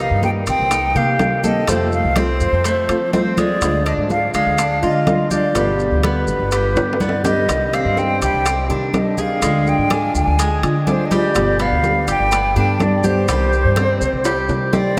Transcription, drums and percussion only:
0.23 high bongo, high conga, low timbale, maracas
0.47 high bongo, high conga, high timbale, maracas
0.71 high bongo, high conga, high timbale, maracas
0.96 high bongo, high conga, maracas
1.19 high bongo, low bongo, high conga, high timbale, low timbale, maracas
1.44 high conga, maracas
1.68 high bongo, high conga, high timbale, maracas
1.92 high bongo, high conga, maracas
2.16 high bongo, high conga, high timbale, low timbale, maracas
2.40 high bongo, high conga, maracas
2.64 high bongo, high conga, high timbale, maracas
2.89 high bongo, high conga, high timbale, maracas
3.13 high bongo, low bongo, high conga, low timbale, maracas
3.37 high conga, high timbale, maracas
3.61 high bongo, high conga, high timbale, maracas
3.86 high bongo, high conga, high timbale, maracas
4.10 high bongo, high conga, low timbale, maracas
4.34 high bongo, high conga, high timbale, maracas
4.58 high bongo, high conga, high timbale, maracas
4.83 high bongo, high conga, maracas
5.07 high bongo, low bongo, high conga, high timbale, low timbale, maracas
5.31 high conga, maracas
5.55 high bongo, high conga, high timbale, maracas
5.79 high bongo, high conga, maracas
6.03 high bongo, high conga, high timbale, low timbale, maracas
6.27 high bongo, high conga, maracas
6.52 high bongo, high conga, high timbale, maracas
6.76 high bongo, high conga, high timbale, maracas
6.93 low timbale
7.00 high bongo, low bongo, high conga, maracas
7.09 low timbale
7.24 high conga, low timbale, maracas
7.49 high bongo, high timbale, maracas
7.73 high bongo, high conga, high timbale, maracas
7.97 high bongo, high conga, low timbale, maracas
8.21 high bongo, high conga, high timbale, maracas
8.46 high bongo, high conga, high timbale, maracas
8.70 high bongo, high conga, maracas
8.94 high bongo, low bongo, high conga, high timbale, low timbale, maracas
9.18 high conga, maracas
9.42 high bongo, high conga, high timbale, maracas
9.66 high bongo, high conga, maracas
9.90 high bongo, high conga, high timbale, low timbale, maracas
10.15 high bongo, high conga, maracas
10.39 high bongo, high conga, high timbale, maracas
10.63 high bongo, high conga, high timbale, maracas
10.87 high bongo, low bongo, high conga, low timbale, maracas
11.11 high conga, high timbale, maracas
11.35 high bongo, high conga, high timbale, maracas
11.59 high bongo, high conga, high timbale, maracas
11.84 high bongo, high conga, low timbale, maracas
12.08 high bongo, high conga, high timbale, maracas
12.32 high bongo, high conga, high timbale, maracas
12.56 high bongo, high conga, maracas
12.80 high bongo, low bongo, high conga, high timbale, low timbale, maracas
13.04 high conga, maracas
13.28 high bongo, high timbale, maracas
13.52 high bongo, high conga, maracas
13.76 high bongo, high conga, high timbale, low timbale, maracas
14.01 high bongo, high conga, maracas
14.25 high bongo, high conga, high timbale, maracas
14.49 high bongo, high conga, high timbale, maracas
14.73 high bongo, low bongo, high conga, low timbale, maracas

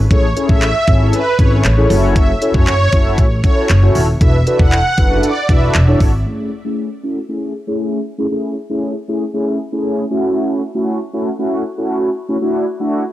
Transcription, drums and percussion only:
0.11 kick, closed hi-hat
0.37 closed hi-hat
0.49 kick
0.62 clap, closed hi-hat
0.87 kick, closed hi-hat
1.13 closed hi-hat
1.39 kick, closed hi-hat
1.65 clap, closed hi-hat
1.90 open hi-hat
2.16 kick, closed hi-hat
2.42 closed hi-hat
2.54 kick
2.67 clap, closed hi-hat
2.92 kick, closed hi-hat
3.18 kick, closed hi-hat
3.44 kick, closed hi-hat
3.70 clap, closed hi-hat
3.95 open hi-hat
4.21 kick, closed hi-hat
4.47 closed hi-hat
4.59 kick
4.72 clap, closed hi-hat
4.98 kick, closed hi-hat
5.23 closed hi-hat
5.49 kick, closed hi-hat
5.75 clap, closed hi-hat
6.00 kick, open hi-hat

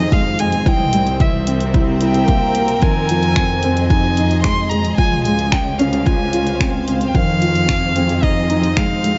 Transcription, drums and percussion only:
0.12 kick, closed hi-hat
0.39 closed hi-hat
0.52 closed hi-hat
0.66 kick, closed hi-hat
0.80 mid tom
0.93 closed hi-hat
1.07 closed hi-hat
1.20 kick, closed hi-hat
1.47 closed hi-hat
1.60 closed hi-hat
1.74 kick, closed hi-hat
2.01 closed hi-hat
2.14 closed hi-hat
2.28 kick, closed hi-hat
2.55 closed hi-hat
2.68 closed hi-hat
2.82 kick, closed hi-hat
3.09 closed hi-hat
3.23 closed hi-hat
3.36 finger snap, kick, closed hi-hat
3.63 closed hi-hat
3.77 closed hi-hat
3.90 kick, closed hi-hat
4.17 closed hi-hat
4.31 closed hi-hat
4.44 finger snap, kick, closed hi-hat
4.71 closed hi-hat
4.85 closed hi-hat
4.98 kick, closed hi-hat
5.12 mid tom
5.25 closed hi-hat
5.39 closed hi-hat
5.52 finger snap, kick, closed hi-hat
5.79 closed hi-hat
5.93 closed hi-hat
6.06 kick, closed hi-hat
6.33 closed hi-hat
6.47 closed hi-hat
6.60 finger snap, kick, closed hi-hat
6.88 closed hi-hat
7.01 closed hi-hat
7.15 kick, closed hi-hat
7.42 closed hi-hat
7.55 closed hi-hat
7.69 finger snap, kick
7.96 closed hi-hat
8.09 closed hi-hat
8.23 kick, closed hi-hat
8.50 closed hi-hat
8.63 closed hi-hat
8.77 finger snap, kick
9.04 closed hi-hat

